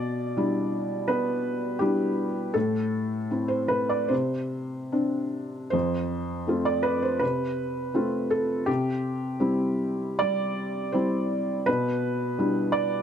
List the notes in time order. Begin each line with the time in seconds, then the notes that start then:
Already playing: B2 D5
0.37 G3 D4 E4
1.08 B3 B4
1.79 G3 D4 E4 G4
2.54 A2 A4
3.31 C4 E4
3.48 C5
3.68 B4
3.89 D5
4.08 C3 C5
4.92 C4 D4
5.70 F2 C5
6.47 A3 C4 F4
6.65 D5
6.83 B4
7.02 C5
7.19 C3 B4
7.94 A3 C4 F4
8.30 A4
8.66 C3 G4
9.40 G3 C4 E4
10.19 G3 D5
10.92 G3 C4 E4 C5
11.66 B2 B4
12.38 G3 D4 E4
12.72 D5